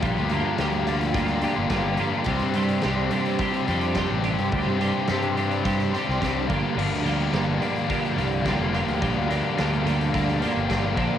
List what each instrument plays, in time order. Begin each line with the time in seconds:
Already playing: analog synth pad G4 F5 A#5
0.01 fingered electric bass A#1, clean electric guitar G2 D3 F3 A#3 F4 G4, overdriven electric guitar G3 D4, kick, closed hi-hat
0.17 fingered electric bass D2
0.29 clean electric guitar G2 D3 F3 A#3 F4 G4, overdriven electric guitar G3 D4, closed hi-hat
0.58 fingered electric bass D2, clean electric guitar G2 D3 F3 A#3 F4 G4, overdriven electric guitar G3 D4, snare, closed hi-hat
0.72 closed hi-hat
0.86 clean electric guitar G2 D3 F3 A#3 F4 G4, overdriven electric guitar G3 D4, closed hi-hat
1.01 closed hi-hat
1.14 clean electric guitar G2 D3 F3 A#3 F4 G4, overdriven electric guitar G3 D4, kick, closed hi-hat
1.28 closed hi-hat
1.41 clean electric guitar G2 D3 F3 A#3 F4 G4, overdriven electric guitar G3 D4, closed hi-hat
1.58 fingered electric bass G1
1.70 fingered electric bass G1, clean electric guitar G2 D3 F3 A#3 F4 G4, overdriven electric guitar G3 D4, kick, snare, closed hi-hat
1.97 clean electric guitar G2 D3 F3 A#3 F4 G4, fingered electric bass G2, overdriven electric guitar G3 D4, closed hi-hat
2.24 fingered electric bass C2, clean electric guitar C3 G3 C4 D4 G4, kick, closed hi-hat
2.31 analog synth pad D5 C6
2.39 fingered electric bass G2, closed hi-hat
2.54 clean electric guitar C3 G3 C4 D4 G4, closed hi-hat
2.69 closed hi-hat
2.82 fingered electric bass C2, clean electric guitar C3 G3 C4 D4 G4, snare, closed hi-hat
3.11 clean electric guitar C3 G3 C4 D4 G4, closed hi-hat
3.25 closed hi-hat
3.39 clean electric guitar C3 G3 C4 D4 G4, kick, closed hi-hat
3.54 closed hi-hat
3.68 fingered electric bass F2, clean electric guitar C3 G3 C4 D4 G4, closed hi-hat
3.81 closed hi-hat
3.95 clean electric guitar C3 G3 C4 D4 G4, kick, snare, closed hi-hat
4.10 fingered electric bass A1
4.23 clean electric guitar C3 G3 C4 D4 G4, closed hi-hat
4.38 fingered electric bass G2, closed hi-hat
4.52 fingered electric bass D2, clean electric guitar C3 G3 C4 D4 G4, kick, closed hi-hat
4.67 fingered electric bass G2
4.80 clean electric guitar C3 G3 C4 D4 G4, closed hi-hat
5.07 fingered electric bass G2, clean electric guitar C3 G3 C4 D4 G4, snare, closed hi-hat
5.22 closed hi-hat
5.36 clean electric guitar C3 G3 C4 D4 G4, closed hi-hat
5.51 closed hi-hat
5.65 clean electric guitar C3 G3 C4 D4 G4, kick, closed hi-hat
5.80 closed hi-hat
5.93 clean electric guitar C3 G3 C4 D4 G4, closed hi-hat
6.09 fingered electric bass C2, snare
6.21 fingered electric bass C2, clean electric guitar C3 G3 C4 D4 G4, kick, snare, closed hi-hat
6.48 fingered electric bass G1, clean electric guitar G2 D3 F3 A#3 D4 G4, overdriven electric guitar G3 A#4, analog synth pad F5 G5, kick, closed hi-hat
6.76 fingered electric bass G1, clean electric guitar G2 D3 F3 A#3 D4 G4, overdriven electric guitar G3 A#4, crash
6.91 fingered electric bass D2, closed hi-hat
7.02 clean electric guitar G2 D3 F3 A#3 D4 G4, overdriven electric guitar G3 A#4, closed hi-hat
7.20 closed hi-hat
7.32 fingered electric bass G1, clean electric guitar G2 D3 F3 A#3 D4 G4, overdriven electric guitar G3 A#4, snare, closed hi-hat
7.59 clean electric guitar G2 D3 F3 A#3 D4 G4, overdriven electric guitar G3 A#4, closed hi-hat
7.76 closed hi-hat
7.88 clean electric guitar G2 D3 F3 A#3 D4 G4, overdriven electric guitar G3 A#4, kick, closed hi-hat
8.05 closed hi-hat
8.16 fingered electric bass C2, clean electric guitar G2 D3 F3 A#3 D4 G4, overdriven electric guitar G3 A#4, closed hi-hat
8.32 closed hi-hat
8.44 clean electric guitar G2 D3 F3 A#3 D4, overdriven electric guitar G3 A#4, kick, snare, closed hi-hat
8.48 clean electric guitar G4
8.59 fingered electric bass F1
8.73 clean electric guitar G2 D3 F3 A#3 D4 G4, overdriven electric guitar G3 A#4, closed hi-hat
8.88 fingered electric bass D2, closed hi-hat
9.01 fingered electric bass A#1, clean electric guitar G2 D3 F3 A#3 D4 G4, overdriven electric guitar G3 A#4, kick, closed hi-hat
9.17 fingered electric bass D2
9.29 clean electric guitar G2 D3 F3 A#3 D4 G4, overdriven electric guitar G3 A#4, closed hi-hat
9.56 fingered electric bass D2, clean electric guitar G2 D3 F3 A#3 D4 G4, overdriven electric guitar G3 A#4, snare, closed hi-hat
9.73 closed hi-hat
9.84 clean electric guitar G2 D3 F3 A#3 D4 G4, overdriven electric guitar G3 A#4, closed hi-hat
10.01 closed hi-hat
10.12 clean electric guitar G2 D3 F3 A#3 D4 G4, overdriven electric guitar G3 A#4, kick, closed hi-hat
10.29 closed hi-hat
10.41 clean electric guitar G2 D3 F3 A#3 D4 G4, overdriven electric guitar G3 A#4, closed hi-hat
10.57 fingered electric bass G1
10.68 fingered electric bass G1, clean electric guitar G2 D3 F3 A#3 D4 G4, overdriven electric guitar G3 A#4, kick, snare, closed hi-hat
10.96 fingered electric bass A#1, clean electric guitar A#2 D3 F3 A#3 D4 A4, overdriven electric guitar A#4, analog synth pad D5 A5, kick, closed hi-hat